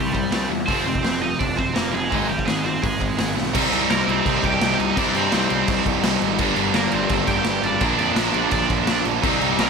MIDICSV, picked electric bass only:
0, 0, Header, 1, 2, 480
1, 0, Start_track
1, 0, Key_signature, -3, "minor"
1, 0, Tempo, 356718
1, 923, Time_signature, 4, 2, 24, 8
1, 13050, End_track
2, 0, Start_track
2, 0, Title_t, "Picked electric bass"
2, 0, Program_c, 0, 34
2, 0, Note_on_c, 0, 36, 87
2, 337, Note_off_c, 0, 36, 0
2, 432, Note_on_c, 0, 36, 86
2, 626, Note_off_c, 0, 36, 0
2, 670, Note_on_c, 0, 40, 79
2, 865, Note_off_c, 0, 40, 0
2, 924, Note_on_c, 0, 29, 91
2, 1114, Note_off_c, 0, 29, 0
2, 1155, Note_on_c, 0, 29, 86
2, 1350, Note_off_c, 0, 29, 0
2, 1403, Note_on_c, 0, 29, 82
2, 1785, Note_off_c, 0, 29, 0
2, 1890, Note_on_c, 0, 29, 92
2, 2270, Note_off_c, 0, 29, 0
2, 2367, Note_on_c, 0, 29, 87
2, 2559, Note_off_c, 0, 29, 0
2, 2607, Note_on_c, 0, 29, 88
2, 2800, Note_off_c, 0, 29, 0
2, 2858, Note_on_c, 0, 32, 92
2, 3047, Note_off_c, 0, 32, 0
2, 3090, Note_on_c, 0, 32, 89
2, 3282, Note_off_c, 0, 32, 0
2, 3335, Note_on_c, 0, 32, 83
2, 3716, Note_off_c, 0, 32, 0
2, 3813, Note_on_c, 0, 32, 90
2, 4195, Note_off_c, 0, 32, 0
2, 4297, Note_on_c, 0, 32, 84
2, 4487, Note_off_c, 0, 32, 0
2, 4531, Note_on_c, 0, 35, 84
2, 4724, Note_off_c, 0, 35, 0
2, 4778, Note_on_c, 0, 36, 99
2, 4932, Note_off_c, 0, 36, 0
2, 5011, Note_on_c, 0, 36, 93
2, 5168, Note_off_c, 0, 36, 0
2, 5242, Note_on_c, 0, 36, 91
2, 5402, Note_off_c, 0, 36, 0
2, 5490, Note_on_c, 0, 36, 93
2, 5647, Note_off_c, 0, 36, 0
2, 5728, Note_on_c, 0, 36, 95
2, 5885, Note_off_c, 0, 36, 0
2, 5967, Note_on_c, 0, 36, 93
2, 6124, Note_off_c, 0, 36, 0
2, 6213, Note_on_c, 0, 36, 95
2, 6368, Note_off_c, 0, 36, 0
2, 6454, Note_on_c, 0, 36, 92
2, 6608, Note_off_c, 0, 36, 0
2, 6690, Note_on_c, 0, 36, 101
2, 6845, Note_off_c, 0, 36, 0
2, 6928, Note_on_c, 0, 43, 98
2, 7084, Note_off_c, 0, 43, 0
2, 7176, Note_on_c, 0, 36, 90
2, 7329, Note_off_c, 0, 36, 0
2, 7415, Note_on_c, 0, 36, 92
2, 7569, Note_off_c, 0, 36, 0
2, 7647, Note_on_c, 0, 36, 102
2, 7803, Note_off_c, 0, 36, 0
2, 7884, Note_on_c, 0, 36, 92
2, 8041, Note_off_c, 0, 36, 0
2, 8129, Note_on_c, 0, 36, 97
2, 8283, Note_off_c, 0, 36, 0
2, 8370, Note_on_c, 0, 32, 100
2, 8607, Note_off_c, 0, 32, 0
2, 8607, Note_on_c, 0, 31, 107
2, 8761, Note_off_c, 0, 31, 0
2, 8842, Note_on_c, 0, 31, 98
2, 8998, Note_off_c, 0, 31, 0
2, 9082, Note_on_c, 0, 31, 91
2, 9238, Note_off_c, 0, 31, 0
2, 9329, Note_on_c, 0, 31, 103
2, 9482, Note_off_c, 0, 31, 0
2, 9562, Note_on_c, 0, 31, 104
2, 9717, Note_off_c, 0, 31, 0
2, 9796, Note_on_c, 0, 31, 91
2, 9953, Note_off_c, 0, 31, 0
2, 10029, Note_on_c, 0, 31, 94
2, 10188, Note_off_c, 0, 31, 0
2, 10273, Note_on_c, 0, 32, 94
2, 10430, Note_off_c, 0, 32, 0
2, 10511, Note_on_c, 0, 34, 109
2, 10669, Note_off_c, 0, 34, 0
2, 10746, Note_on_c, 0, 41, 101
2, 10905, Note_off_c, 0, 41, 0
2, 10987, Note_on_c, 0, 34, 91
2, 11145, Note_off_c, 0, 34, 0
2, 11227, Note_on_c, 0, 34, 94
2, 11385, Note_off_c, 0, 34, 0
2, 11469, Note_on_c, 0, 34, 105
2, 11626, Note_off_c, 0, 34, 0
2, 11707, Note_on_c, 0, 34, 92
2, 11864, Note_off_c, 0, 34, 0
2, 11947, Note_on_c, 0, 34, 88
2, 12104, Note_off_c, 0, 34, 0
2, 12192, Note_on_c, 0, 34, 93
2, 12347, Note_off_c, 0, 34, 0
2, 12426, Note_on_c, 0, 36, 99
2, 12582, Note_off_c, 0, 36, 0
2, 12665, Note_on_c, 0, 36, 97
2, 12822, Note_off_c, 0, 36, 0
2, 12905, Note_on_c, 0, 36, 93
2, 13050, Note_off_c, 0, 36, 0
2, 13050, End_track
0, 0, End_of_file